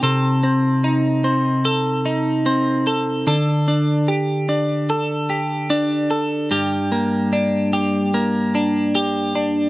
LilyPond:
\new Staff \with { instrumentName = "Clean electric guitar" } { \time 4/4 \key g \minor \tempo 4 = 74 <c a'>8 c'8 ees'8 c'8 a'8 ees'8 c'8 a'8 | <d a'>8 d'8 g'8 d'8 a'8 g'8 d'8 a'8 | <g, g'>8 bes8 d'8 g'8 bes8 d'8 g'8 d'8 | }